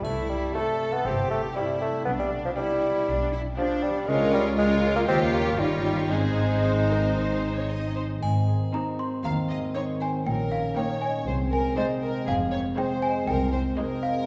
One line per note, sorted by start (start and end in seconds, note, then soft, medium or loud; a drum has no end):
0.00 0.88 G3 soft
0.00 0.31 A3 medium
0.04 0.45 C2 soft
0.04 1.05 C3 soft
0.04 0.52 E4 soft
0.04 triangle soft
0.21 1.22 C4 soft
0.29 0.54 G3 soft
0.39 0.72 E4 soft
0.55 0.95 A3 medium
0.55 0.93 E4 soft
0.55 0.93 G4 soft
0.55 1.56 G4 soft
0.55 1.05 A4 soft
0.55 0.93 C5 soft
0.90 1.89 G3 soft
0.90 1.07 B3 medium
1.05 1.46 G1 soft
1.05 2.09 C3 soft
1.05 1.30 C4 medium
1.05 1.57 G4 soft
1.23 2.09 C4 soft
1.31 1.42 A3 soft
1.40 1.72 E4 soft
1.55 1.81 G3 soft
1.55 2.07 E4 soft
1.55 1.94 E4 soft
1.55 1.94 G4 soft
1.55 2.55 G4 soft
1.55 1.93 C5 soft
1.73 2.09 E4 soft
1.81 2.05 A3 medium
1.90 2.89 G3 soft
2.05 2.46 B1 soft
2.05 3.06 B2 soft
2.05 2.11 B3 medium
2.05 2.56 D4 soft
2.19 2.30 G3 medium
2.23 3.22 B3 soft
2.40 2.73 D4 soft
2.45 2.51 F3 medium
2.57 3.31 G3 medium
2.57 2.95 D4 soft
2.57 3.06 E4 soft
2.57 3.56 G4 soft
2.57 2.95 G4 soft
2.57 2.95 D5 soft
2.74 3.39 D4 soft
2.90 3.89 G3 soft
3.07 3.47 B1 medium
3.07 4.10 B2 soft
3.07 3.32 D4 medium
3.24 4.10 B3 soft
3.32 3.40 E4 soft
3.41 3.73 D4 soft
3.57 3.85 F3 medium
3.57 4.06 D4 medium
3.57 3.95 D4 medium
3.57 3.95 G4 medium
3.57 4.10 G4 soft
3.57 3.95 D5 medium
3.74 4.10 D4 soft
3.83 4.10 G3 medium
3.90 4.10 G3 soft
4.07 5.04 C#2 medium
4.07 5.10 C#3 medium
4.07 4.33 G#3 medium
4.07 4.57 C#4 medium
4.07 4.54 F4 medium
4.07 4.54 A#4 medium
4.07 4.54 C#5 medium
4.24 5.10 G#3 soft
4.33 4.45 G3 medium
4.41 4.73 C#4 soft
4.58 4.95 G#3 medium
4.58 5.07 F4 medium
4.58 6.13 A#4 medium
4.58 5.07 A#4 medium
4.58 5.06 C#5 soft
4.74 5.93 C#4 soft
4.91 6.14 A#3 soft
4.96 5.02 A#3 medium
5.08 5.59 D#2 medium
5.08 6.13 D#3 medium
5.08 5.20 C4 medium
5.08 5.58 F4 medium
5.08 5.58 G4 medium
5.08 5.57 C#5 medium
5.24 6.13 G3 soft
5.33 5.61 A#3 medium
5.42 5.75 F4 soft
5.59 6.10 G1 soft
5.59 5.85 G3 medium
5.59 6.12 D#4 medium
5.59 6.10 F4 soft
5.59 6.10 G4 soft
5.59 6.10 C#5 medium
5.59 6.13 C#5 soft
5.76 6.13 F4 soft
5.85 5.97 G3 medium
5.94 6.14 C#4 soft
6.11 8.02 G#1 soft
6.11 7.16 G#2 soft
6.11 7.67 G#3 medium
6.11 7.96 C4 soft
6.11 8.02 D#4 soft
6.11 6.59 G#4 soft
6.11 8.02 C5 soft
6.29 7.34 D#3 soft
6.47 6.81 C4 soft
6.64 7.69 G#4 soft
6.64 6.72 C5 soft
6.82 7.52 C4 soft
6.90 6.98 A#4 soft
7.00 8.04 G#3 soft
7.17 8.21 G#2 soft
7.17 7.56 C5 soft
7.35 8.24 D#3 soft
7.53 7.87 C4 soft
7.53 7.70 C#5 soft
7.69 10.28 G#4 soft
7.69 7.96 D#5 soft
7.88 10.28 C4 soft
7.96 8.04 C5 soft
8.05 8.47 G#3 soft
8.22 8.62 G#1 medium
8.22 8.63 G#2 soft
8.22 10.28 G#2 soft
8.22 11.23 D#3 soft
8.22 10.22 C4 soft
8.22 8.70 G#5 medium
8.22 triangle soft
8.48 9.49 G#3 soft
8.73 9.11 C4 soft
8.73 9.11 D#4 soft
8.73 9.75 D#4 soft
8.73 9.11 C5 soft
8.73 8.97 A#5 medium
8.99 10.00 C5 soft
8.99 9.23 C6 medium
9.24 9.64 D#2 medium
9.24 9.65 D#2 soft
9.24 10.28 D#3 soft
9.24 9.32 F5 soft
9.24 9.97 A#5 medium
9.49 10.28 G#3 soft
9.49 9.57 D#5 soft
9.75 10.13 C4 soft
9.75 10.13 D#4 soft
9.75 10.75 D#4 soft
9.75 10.13 C5 soft
9.75 9.83 C#5 soft
10.01 10.09 C5 soft
10.01 10.28 C5 soft
10.01 10.25 G#5 medium
10.25 10.66 A#1 medium
10.25 10.66 A#2 medium
10.25 11.29 A#2 soft
10.25 11.24 C#4 soft
10.25 10.75 A#4 soft
10.25 10.50 G5 medium
10.52 11.29 C#4 soft
10.52 10.75 F5 medium
10.76 11.14 A#3 soft
10.76 11.14 D#4 soft
10.76 14.26 D#4 soft
10.76 11.14 C#5 soft
10.76 11.27 C#5 soft
10.76 11.00 G5 medium
11.02 12.01 D#5 soft
11.02 11.48 G#5 medium
11.26 11.67 C2 medium
11.26 11.66 C3 medium
11.26 12.30 C3 soft
11.26 14.26 G#3 soft
11.26 14.26 C4 soft
11.26 11.35 C5 soft
11.52 12.51 C4 soft
11.52 11.77 A#4 soft
11.52 11.76 G#5 medium
11.77 12.14 G#3 soft
11.77 12.15 D#4 soft
11.77 12.76 G#4 soft
11.77 11.85 C5 medium
11.77 12.14 C5 soft
11.77 12.24 D#5 medium
12.02 12.27 A#4 soft
12.02 13.02 D#5 soft
12.27 12.67 F1 medium
12.27 14.26 F2 soft
12.27 12.67 F2 medium
12.27 12.35 G#4 soft
12.27 12.74 F5 medium
12.52 13.52 C4 soft
12.52 12.60 C#5 medium
12.77 13.14 G#3 soft
12.77 13.14 D#4 soft
12.77 13.76 G#4 soft
12.77 13.15 C5 soft
12.77 13.27 C5 soft
12.77 13.01 G5 medium
13.02 14.02 D#5 soft
13.02 13.26 G#5 medium
13.27 13.67 C2 medium
13.27 14.26 C3 soft
13.27 13.52 A#4 medium
13.27 13.99 G5 medium
13.52 14.26 C4 soft
13.52 13.60 C5 medium
13.77 14.15 G#3 medium
13.77 14.15 D#4 medium
13.77 14.26 G#4 soft
13.77 14.26 A#4 medium
13.77 14.15 C5 medium
14.03 14.26 D#5 soft
14.03 14.26 F5 medium